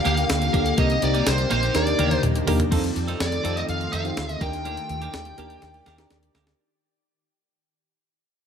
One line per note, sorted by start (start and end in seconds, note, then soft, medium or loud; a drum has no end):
0.00 0.76 D3 medium
0.00 0.53 A#3 medium
0.00 1.72 A#3 medium
0.00 0.54 D4 medium
0.00 0.54 F4 medium
0.00 0.54 G4 medium
0.00 0.74 G4 loud
0.00 0.79 A#4 medium
0.05 0.23 D2 loud
0.05 0.21 A#3 medium
0.05 0.17 D4 loud
0.05 0.16 G4 loud
0.05 0.79 F5 loud
0.05 closed hi-hat medium
0.17 closed hi-hat medium
0.29 0.47 D2 loud
0.29 snare loud
0.29 closed hi-hat medium
0.29 tambourine medium
0.41 muted clean electric guitar stroke soft
0.41 closed hi-hat medium
0.53 0.71 D2 loud
0.53 0.71 A#3 medium
0.53 0.69 A#3 medium
0.53 0.71 D4 medium
0.53 0.65 D4 medium
0.53 0.71 F4 medium
0.53 0.71 G4 medium
0.53 0.64 G4 loud
0.53 0.71 A4 medium
0.53 kick loud
0.53 closed hi-hat medium
0.66 muted clean electric guitar stroke medium
0.66 closed hi-hat medium
0.77 0.96 C2 loud
0.77 0.93 A#3 medium
0.77 0.95 A#3 medium
0.77 0.95 C4 medium
0.77 0.95 D#4 medium
0.77 0.89 D#4 loud
0.77 0.95 G4 medium
0.77 0.88 G4 loud
0.77 0.95 A#4 medium
0.77 1.01 D#5 loud
0.77 kick loud
0.77 closed hi-hat medium
0.90 muted clean electric guitar stroke medium
0.90 closed hi-hat medium
1.02 1.20 C2 medium
1.02 1.70 A#3 medium
1.02 1.70 C4 medium
1.02 1.70 D#4 medium
1.02 1.70 G4 medium
1.02 1.70 A#4 medium
1.02 1.28 D5 medium
1.02 muted clean electric guitar stroke soft
1.02 closed hi-hat medium
1.14 1.25 A#3 medium
1.14 1.26 D#4 medium
1.14 1.26 G4 medium
1.14 closed hi-hat medium
1.26 1.44 C2 loud
1.26 1.51 C5 medium
1.26 snare loud
1.26 closed hi-hat medium
1.26 tambourine medium
1.38 muted clean electric guitar stroke medium
1.38 closed hi-hat medium
1.50 1.68 A#1 loud
1.50 1.63 A#3 loud
1.50 1.62 D#4 loud
1.50 1.61 G4 loud
1.50 1.76 C5 medium
1.50 closed hi-hat medium
1.62 1.73 A#3 soft
1.62 1.75 D#4 medium
1.62 1.74 G4 medium
1.62 closed hi-hat medium
1.74 1.92 D#2 loud
1.74 2.33 A#3 medium
1.74 2.33 D4 medium
1.74 2.33 D#4 medium
1.74 2.33 G4 medium
1.74 2.33 A#4 medium
1.74 2.21 D5 medium
1.74 muted clean electric guitar stroke soft
1.74 snare medium
1.74 closed hi-hat medium
1.87 muted clean electric guitar stroke soft
1.87 closed hi-hat soft
1.99 2.17 D#2 loud
1.99 2.14 A#3 medium
1.99 2.11 D4 medium
1.99 2.10 G4 loud
1.99 closed hi-hat medium
1.99 high tom medium
2.11 muted clean electric guitar stroke medium
2.11 closed hi-hat medium
2.11 high tom medium
2.23 2.41 D#2 loud
2.23 closed hi-hat medium
2.23 mid tom medium
2.36 muted clean electric guitar stroke soft
2.36 closed hi-hat medium
2.47 2.65 D#2 medium
2.47 2.64 A#3 medium
2.47 2.63 A#3 medium
2.47 2.64 D4 medium
2.47 2.59 D4 medium
2.47 2.65 D#4 medium
2.47 2.65 G4 medium
2.47 2.58 G4 medium
2.47 2.65 A#4 medium
2.47 floor tom loud
2.47 open hi-hat medium
2.59 muted clean electric guitar stroke soft
2.59 closed hi-hat medium
2.59 floor tom loud
2.71 2.89 F2 loud
2.71 6.55 D#3 medium
2.71 4.40 A3 medium
2.71 3.22 C4 medium
2.71 2.87 C4 medium
2.71 3.23 D#4 medium
2.71 2.83 D#4 medium
2.71 4.39 F4 medium
2.71 3.23 F4 medium
2.71 3.23 A4 medium
2.71 2.82 A4 loud
2.71 kick loud
2.71 closed hi-hat medium
2.71 crash medium
2.83 muted clean electric guitar stroke soft
2.83 closed hi-hat medium
2.96 3.13 F2 medium
2.96 muted clean electric guitar stroke soft
2.96 closed hi-hat medium
3.08 3.19 C4 medium
3.08 3.19 D#4 medium
3.08 3.20 A4 medium
3.08 closed hi-hat soft
3.20 3.38 F2 medium
3.20 3.57 D5 medium
3.20 muted clean electric guitar stroke soft
3.20 snare loud
3.20 closed hi-hat medium
3.32 muted clean electric guitar stroke soft
3.32 closed hi-hat soft
3.43 3.62 F2 medium
3.43 3.56 C4 medium
3.43 3.87 C4 medium
3.43 3.87 D#4 medium
3.43 3.55 D#4 medium
3.43 3.87 F4 medium
3.43 3.87 A4 medium
3.43 3.54 A4 medium
3.43 closed hi-hat medium
3.56 3.67 D#4 soft
3.56 3.68 A4 medium
3.56 3.63 D#5 medium
3.56 closed hi-hat soft
3.68 3.86 F2 medium
3.68 3.92 F5 medium
3.68 muted clean electric guitar stroke soft
3.68 closed hi-hat medium
3.80 muted clean electric guitar stroke soft
3.80 closed hi-hat soft
3.92 4.10 F2 medium
3.92 4.08 C4 medium
3.92 4.04 D#4 medium
3.92 4.03 A4 medium
3.92 4.43 F5 medium
3.92 closed hi-hat medium
4.04 4.41 C4 medium
4.04 4.40 D#4 medium
4.04 4.41 F4 medium
4.04 4.40 G4 medium
4.04 muted clean electric guitar stroke soft
4.04 closed hi-hat soft
4.17 4.34 D2 medium
4.17 snare loud
4.17 closed hi-hat medium
4.29 muted clean electric guitar stroke medium
4.29 closed hi-hat soft
4.41 4.76 D#2 medium
4.41 4.56 A#3 medium
4.41 5.18 D4 medium
4.41 4.53 D4 medium
4.41 5.19 D#4 medium
4.41 6.57 G4 medium
4.41 5.19 G4 medium
4.41 4.52 G4 medium
4.41 5.19 A#4 medium
4.41 6.57 D5 medium
4.41 6.07 G5 medium
4.41 kick loud
4.41 closed hi-hat medium
4.53 muted clean electric guitar stroke soft
4.53 closed hi-hat soft
4.65 4.81 A#3 medium
4.65 4.77 D4 medium
4.65 4.76 G4 medium
4.65 closed hi-hat medium
4.77 muted clean electric guitar stroke soft
4.77 closed hi-hat medium
4.89 5.07 D#2 medium
4.89 muted clean electric guitar stroke soft
4.89 closed hi-hat medium
5.01 5.13 A#3 soft
5.01 5.13 D4 soft
5.01 5.14 G4 soft
5.01 closed hi-hat soft
5.14 5.31 D#2 medium
5.14 snare loud
5.14 closed hi-hat medium
5.25 muted clean electric guitar stroke soft
5.25 closed hi-hat soft
5.37 5.55 D#2 medium
5.37 5.50 A#3 medium
5.37 5.80 D4 medium
5.37 5.49 D4 medium
5.37 5.80 D#4 medium
5.37 5.80 G4 medium
5.37 5.49 G4 medium
5.37 5.81 A#4 medium
5.37 closed hi-hat medium
5.50 5.61 A#3 soft
5.50 5.62 D4 medium
5.50 5.62 G4 medium
5.50 closed hi-hat soft
5.62 5.80 D#2 medium
5.62 muted clean electric guitar stroke soft
5.62 snare soft
5.62 closed hi-hat medium
5.74 muted clean electric guitar stroke soft
5.74 closed hi-hat soft
5.86 6.04 D#2 medium
5.86 6.02 A#3 medium
5.86 5.98 D4 medium
5.86 5.97 G4 medium
5.86 snare medium
5.86 closed hi-hat medium
5.98 6.40 D4 medium
5.98 6.41 D#4 medium
5.98 6.41 G4 medium
5.98 6.41 A#4 medium
5.98 muted clean electric guitar stroke soft
5.98 snare medium
5.98 closed hi-hat soft
6.10 6.28 D#2 medium
6.10 snare medium
6.10 closed hi-hat medium
6.23 muted clean electric guitar stroke soft
6.23 closed hi-hat soft
6.35 6.52 D2 medium
6.35 6.50 A#3 medium
6.35 6.47 D4 medium
6.35 6.46 G4 medium
6.35 snare medium
6.35 closed hi-hat medium
6.47 muted clean electric guitar stroke soft
6.47 snare medium
6.47 closed hi-hat soft